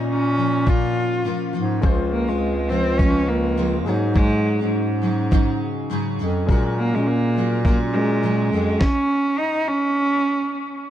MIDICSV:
0, 0, Header, 1, 6, 480
1, 0, Start_track
1, 0, Tempo, 580833
1, 1518, Time_signature, 4, 2, 24, 8
1, 9008, End_track
2, 0, Start_track
2, 0, Title_t, "Grand piano"
2, 0, Program_c, 0, 0
2, 0, Control_c, 0, 64, 127
2, 0, Note_on_c, 0, 58, 55
2, 0, Note_on_c, 0, 61, 52
2, 0, Note_on_c, 0, 65, 49
2, 0, Note_on_c, 0, 73, 65
2, 1476, Note_off_c, 0, 58, 0
2, 1480, Note_off_c, 0, 61, 0
2, 1488, Note_off_c, 0, 65, 0
2, 1491, Note_off_c, 0, 73, 0
2, 1500, Note_on_c, 0, 56, 72
2, 1512, Note_on_c, 0, 61, 63
2, 1521, Note_on_c, 0, 65, 63
2, 1528, Control_c, 0, 64, 0
2, 1531, Note_on_c, 0, 72, 78
2, 1654, Control_c, 0, 64, 127
2, 3158, Note_off_c, 0, 56, 0
2, 3164, Note_off_c, 0, 61, 0
2, 3168, Note_off_c, 0, 65, 0
2, 3173, Note_off_c, 0, 72, 0
2, 3179, Note_on_c, 0, 56, 64
2, 3191, Note_on_c, 0, 63, 53
2, 3203, Note_on_c, 0, 66, 54
2, 3210, Control_c, 0, 64, 0
2, 3214, Note_on_c, 0, 73, 69
2, 3377, Control_c, 0, 64, 127
2, 5077, Note_off_c, 0, 56, 0
2, 5084, Note_off_c, 0, 63, 0
2, 5089, Note_off_c, 0, 66, 0
2, 5095, Note_off_c, 0, 73, 0
2, 5340, Note_on_c, 0, 56, 68
2, 5352, Note_on_c, 0, 61, 60
2, 5363, Note_on_c, 0, 66, 65
2, 5371, Control_c, 0, 64, 0
2, 5375, Note_on_c, 0, 70, 75
2, 5523, Control_c, 0, 64, 127
2, 6526, Note_off_c, 0, 56, 0
2, 6532, Note_off_c, 0, 61, 0
2, 6538, Note_off_c, 0, 66, 0
2, 6544, Note_off_c, 0, 70, 0
2, 6560, Note_on_c, 0, 56, 39
2, 6563, Note_on_c, 0, 61, 41
2, 6569, Note_on_c, 0, 66, 36
2, 6575, Note_on_c, 0, 70, 40
2, 7280, Note_off_c, 0, 56, 0
2, 7281, Note_off_c, 0, 61, 0
2, 7284, Note_off_c, 0, 66, 0
2, 7287, Note_off_c, 0, 70, 0
2, 7292, Control_c, 0, 64, 0
2, 9008, End_track
3, 0, Start_track
3, 0, Title_t, "Steel-string acoustic guitar"
3, 0, Program_c, 1, 25
3, 0, Note_on_c, 1, 58, 39
3, 0, Note_on_c, 1, 61, 45
3, 0, Note_on_c, 1, 65, 55
3, 305, Note_off_c, 1, 58, 0
3, 308, Note_on_c, 1, 53, 52
3, 312, Note_off_c, 1, 61, 0
3, 315, Note_off_c, 1, 65, 0
3, 315, Note_on_c, 1, 58, 51
3, 322, Note_on_c, 1, 61, 57
3, 328, Note_on_c, 1, 65, 60
3, 540, Note_off_c, 1, 53, 0
3, 545, Note_off_c, 1, 58, 0
3, 547, Note_on_c, 1, 46, 69
3, 549, Note_off_c, 1, 61, 0
3, 550, Note_on_c, 1, 53, 68
3, 552, Note_off_c, 1, 65, 0
3, 555, Note_on_c, 1, 58, 71
3, 559, Note_on_c, 1, 61, 68
3, 562, Note_on_c, 1, 65, 78
3, 1017, Note_off_c, 1, 46, 0
3, 1025, Note_off_c, 1, 58, 0
3, 1027, Note_on_c, 1, 46, 63
3, 1033, Note_off_c, 1, 53, 0
3, 1035, Note_on_c, 1, 58, 68
3, 1036, Note_on_c, 1, 53, 58
3, 1039, Note_off_c, 1, 61, 0
3, 1040, Note_off_c, 1, 65, 0
3, 1042, Note_on_c, 1, 61, 69
3, 1043, Note_on_c, 1, 65, 68
3, 1254, Note_off_c, 1, 53, 0
3, 1264, Note_off_c, 1, 58, 0
3, 1264, Note_on_c, 1, 53, 56
3, 1269, Note_off_c, 1, 61, 0
3, 1271, Note_off_c, 1, 65, 0
3, 1272, Note_off_c, 1, 46, 0
3, 1274, Note_on_c, 1, 58, 55
3, 1279, Note_on_c, 1, 61, 67
3, 1281, Note_on_c, 1, 65, 56
3, 1495, Note_off_c, 1, 53, 0
3, 1505, Note_on_c, 1, 53, 68
3, 1507, Note_off_c, 1, 58, 0
3, 1511, Note_on_c, 1, 56, 63
3, 1512, Note_off_c, 1, 65, 0
3, 1515, Note_off_c, 1, 61, 0
3, 1518, Note_on_c, 1, 60, 65
3, 1521, Note_on_c, 1, 65, 71
3, 1872, Note_off_c, 1, 65, 0
3, 1882, Note_on_c, 1, 65, 49
3, 1883, Note_off_c, 1, 60, 0
3, 1884, Note_off_c, 1, 53, 0
3, 1887, Note_off_c, 1, 56, 0
3, 1893, Note_on_c, 1, 60, 43
3, 1902, Note_on_c, 1, 56, 37
3, 2220, Note_off_c, 1, 56, 0
3, 2222, Note_on_c, 1, 53, 48
3, 2228, Note_off_c, 1, 60, 0
3, 2230, Note_on_c, 1, 56, 51
3, 2234, Note_off_c, 1, 65, 0
3, 2238, Note_on_c, 1, 60, 56
3, 2245, Note_on_c, 1, 65, 60
3, 2466, Note_off_c, 1, 53, 0
3, 2471, Note_off_c, 1, 56, 0
3, 2473, Note_on_c, 1, 49, 63
3, 2474, Note_off_c, 1, 60, 0
3, 2475, Note_off_c, 1, 65, 0
3, 2476, Note_on_c, 1, 53, 82
3, 2481, Note_on_c, 1, 56, 69
3, 2484, Note_on_c, 1, 60, 73
3, 2484, Note_on_c, 1, 65, 79
3, 2942, Note_off_c, 1, 49, 0
3, 2944, Note_off_c, 1, 53, 0
3, 2951, Note_off_c, 1, 60, 0
3, 2952, Note_on_c, 1, 49, 65
3, 2954, Note_on_c, 1, 53, 65
3, 2955, Note_off_c, 1, 56, 0
3, 2955, Note_off_c, 1, 65, 0
3, 2958, Note_on_c, 1, 56, 73
3, 2961, Note_on_c, 1, 60, 64
3, 2965, Note_on_c, 1, 65, 83
3, 3185, Note_off_c, 1, 53, 0
3, 3189, Note_on_c, 1, 54, 50
3, 3192, Note_off_c, 1, 56, 0
3, 3196, Note_off_c, 1, 49, 0
3, 3196, Note_on_c, 1, 61, 57
3, 3200, Note_off_c, 1, 60, 0
3, 3202, Note_off_c, 1, 65, 0
3, 3204, Note_on_c, 1, 63, 56
3, 3209, Note_on_c, 1, 68, 60
3, 3410, Note_off_c, 1, 54, 0
3, 3420, Note_on_c, 1, 54, 60
3, 3422, Note_off_c, 1, 61, 0
3, 3425, Note_off_c, 1, 63, 0
3, 3431, Note_off_c, 1, 68, 0
3, 3432, Note_on_c, 1, 61, 58
3, 3435, Note_on_c, 1, 63, 63
3, 3441, Note_on_c, 1, 68, 62
3, 3787, Note_off_c, 1, 68, 0
3, 3796, Note_off_c, 1, 63, 0
3, 3797, Note_on_c, 1, 68, 45
3, 3802, Note_off_c, 1, 54, 0
3, 3803, Note_off_c, 1, 61, 0
3, 3806, Note_on_c, 1, 63, 45
3, 3813, Note_on_c, 1, 61, 41
3, 3818, Note_on_c, 1, 54, 37
3, 4136, Note_off_c, 1, 54, 0
3, 4145, Note_off_c, 1, 61, 0
3, 4145, Note_on_c, 1, 54, 59
3, 4150, Note_off_c, 1, 63, 0
3, 4153, Note_off_c, 1, 68, 0
3, 4155, Note_on_c, 1, 61, 62
3, 4160, Note_on_c, 1, 63, 64
3, 4164, Note_on_c, 1, 68, 60
3, 4387, Note_off_c, 1, 54, 0
3, 4390, Note_off_c, 1, 61, 0
3, 4390, Note_on_c, 1, 44, 75
3, 4393, Note_off_c, 1, 63, 0
3, 4394, Note_off_c, 1, 68, 0
3, 4395, Note_on_c, 1, 49, 70
3, 4397, Note_on_c, 1, 54, 85
3, 4400, Note_on_c, 1, 61, 83
3, 4403, Note_on_c, 1, 63, 88
3, 4404, Note_on_c, 1, 68, 77
3, 4863, Note_off_c, 1, 44, 0
3, 4870, Note_off_c, 1, 49, 0
3, 4873, Note_on_c, 1, 44, 69
3, 4876, Note_off_c, 1, 63, 0
3, 4878, Note_off_c, 1, 54, 0
3, 4879, Note_off_c, 1, 61, 0
3, 4880, Note_on_c, 1, 49, 80
3, 4882, Note_on_c, 1, 54, 77
3, 4882, Note_on_c, 1, 61, 74
3, 4886, Note_on_c, 1, 63, 86
3, 4887, Note_off_c, 1, 68, 0
3, 4890, Note_on_c, 1, 68, 81
3, 5105, Note_off_c, 1, 54, 0
3, 5113, Note_off_c, 1, 61, 0
3, 5115, Note_on_c, 1, 54, 62
3, 5117, Note_off_c, 1, 44, 0
3, 5119, Note_off_c, 1, 63, 0
3, 5121, Note_off_c, 1, 49, 0
3, 5123, Note_on_c, 1, 61, 67
3, 5125, Note_off_c, 1, 68, 0
3, 5129, Note_on_c, 1, 63, 67
3, 5137, Note_on_c, 1, 68, 73
3, 5348, Note_off_c, 1, 54, 0
3, 5358, Note_on_c, 1, 54, 61
3, 5360, Note_off_c, 1, 61, 0
3, 5363, Note_on_c, 1, 56, 66
3, 5365, Note_off_c, 1, 63, 0
3, 5369, Note_off_c, 1, 68, 0
3, 5371, Note_on_c, 1, 61, 68
3, 5374, Note_on_c, 1, 66, 75
3, 5721, Note_off_c, 1, 66, 0
3, 5731, Note_off_c, 1, 54, 0
3, 5731, Note_on_c, 1, 66, 44
3, 5732, Note_off_c, 1, 61, 0
3, 5734, Note_off_c, 1, 56, 0
3, 5742, Note_on_c, 1, 61, 41
3, 5753, Note_on_c, 1, 56, 41
3, 6080, Note_off_c, 1, 66, 0
3, 6082, Note_off_c, 1, 56, 0
3, 6082, Note_on_c, 1, 54, 52
3, 6086, Note_off_c, 1, 61, 0
3, 6092, Note_on_c, 1, 56, 57
3, 6098, Note_on_c, 1, 61, 52
3, 6101, Note_on_c, 1, 66, 56
3, 6314, Note_off_c, 1, 54, 0
3, 6319, Note_off_c, 1, 56, 0
3, 6322, Note_on_c, 1, 46, 69
3, 6324, Note_on_c, 1, 54, 72
3, 6325, Note_off_c, 1, 61, 0
3, 6327, Note_off_c, 1, 66, 0
3, 6329, Note_on_c, 1, 56, 69
3, 6335, Note_on_c, 1, 61, 82
3, 6337, Note_on_c, 1, 66, 67
3, 6787, Note_off_c, 1, 46, 0
3, 6793, Note_off_c, 1, 54, 0
3, 6797, Note_on_c, 1, 46, 64
3, 6798, Note_off_c, 1, 56, 0
3, 6803, Note_on_c, 1, 54, 71
3, 6805, Note_off_c, 1, 66, 0
3, 6806, Note_off_c, 1, 61, 0
3, 6808, Note_on_c, 1, 56, 63
3, 6809, Note_on_c, 1, 61, 64
3, 6815, Note_on_c, 1, 66, 68
3, 7032, Note_off_c, 1, 54, 0
3, 7039, Note_off_c, 1, 46, 0
3, 7041, Note_off_c, 1, 56, 0
3, 7042, Note_on_c, 1, 54, 51
3, 7045, Note_off_c, 1, 61, 0
3, 7047, Note_off_c, 1, 66, 0
3, 7051, Note_on_c, 1, 56, 61
3, 7057, Note_on_c, 1, 61, 57
3, 7063, Note_on_c, 1, 66, 60
3, 7281, Note_off_c, 1, 54, 0
3, 7285, Note_off_c, 1, 56, 0
3, 7288, Note_off_c, 1, 61, 0
3, 7292, Note_off_c, 1, 66, 0
3, 9008, End_track
4, 0, Start_track
4, 0, Title_t, "Cello"
4, 0, Program_c, 2, 42
4, 86, Note_on_c, 2, 61, 90
4, 564, Note_on_c, 2, 65, 88
4, 576, Note_off_c, 2, 61, 0
4, 1281, Note_off_c, 2, 65, 0
4, 1754, Note_on_c, 2, 58, 83
4, 1887, Note_on_c, 2, 56, 76
4, 1900, Note_off_c, 2, 58, 0
4, 2227, Note_on_c, 2, 60, 91
4, 2239, Note_off_c, 2, 56, 0
4, 2461, Note_on_c, 2, 61, 98
4, 2474, Note_off_c, 2, 60, 0
4, 2712, Note_on_c, 2, 58, 86
4, 2724, Note_off_c, 2, 61, 0
4, 3196, Note_off_c, 2, 58, 0
4, 3438, Note_on_c, 2, 56, 114
4, 3886, Note_off_c, 2, 56, 0
4, 5610, Note_on_c, 2, 58, 86
4, 5740, Note_on_c, 2, 56, 73
4, 5753, Note_off_c, 2, 58, 0
4, 5840, Note_on_c, 2, 58, 84
4, 5852, Note_off_c, 2, 56, 0
4, 6313, Note_off_c, 2, 58, 0
4, 6318, Note_on_c, 2, 58, 90
4, 6426, Note_off_c, 2, 58, 0
4, 6556, Note_on_c, 2, 56, 91
4, 7270, Note_on_c, 2, 61, 103
4, 7282, Note_off_c, 2, 56, 0
4, 7754, Note_on_c, 2, 63, 93
4, 7766, Note_off_c, 2, 61, 0
4, 7997, Note_on_c, 2, 61, 98
4, 8009, Note_off_c, 2, 63, 0
4, 8956, Note_off_c, 2, 61, 0
4, 9008, End_track
5, 0, Start_track
5, 0, Title_t, "Bass clarinet"
5, 0, Program_c, 3, 71
5, 0, Note_on_c, 3, 46, 83
5, 1024, Note_off_c, 3, 46, 0
5, 1278, Note_on_c, 3, 44, 80
5, 1499, Note_off_c, 3, 44, 0
5, 1520, Note_on_c, 3, 37, 81
5, 1862, Note_off_c, 3, 37, 0
5, 1886, Note_on_c, 3, 37, 93
5, 3197, Note_on_c, 3, 44, 90
5, 3209, Note_off_c, 3, 37, 0
5, 3778, Note_off_c, 3, 44, 0
5, 3813, Note_on_c, 3, 44, 81
5, 4867, Note_off_c, 3, 44, 0
5, 5128, Note_on_c, 3, 41, 81
5, 5345, Note_off_c, 3, 41, 0
5, 5362, Note_on_c, 3, 46, 79
5, 5704, Note_off_c, 3, 46, 0
5, 5739, Note_on_c, 3, 46, 87
5, 7011, Note_off_c, 3, 46, 0
5, 7042, Note_on_c, 3, 41, 84
5, 7262, Note_off_c, 3, 41, 0
5, 9008, End_track
6, 0, Start_track
6, 0, Title_t, "Drums"
6, 553, Note_on_c, 9, 36, 100
6, 636, Note_off_c, 9, 36, 0
6, 1516, Note_on_c, 9, 36, 98
6, 1599, Note_off_c, 9, 36, 0
6, 2473, Note_on_c, 9, 36, 96
6, 2555, Note_off_c, 9, 36, 0
6, 3435, Note_on_c, 9, 36, 98
6, 3518, Note_off_c, 9, 36, 0
6, 4396, Note_on_c, 9, 36, 102
6, 4479, Note_off_c, 9, 36, 0
6, 5361, Note_on_c, 9, 36, 92
6, 5443, Note_off_c, 9, 36, 0
6, 6320, Note_on_c, 9, 36, 110
6, 6403, Note_off_c, 9, 36, 0
6, 7278, Note_on_c, 9, 38, 77
6, 7281, Note_on_c, 9, 36, 100
6, 7361, Note_off_c, 9, 38, 0
6, 7363, Note_off_c, 9, 36, 0
6, 9008, End_track
0, 0, End_of_file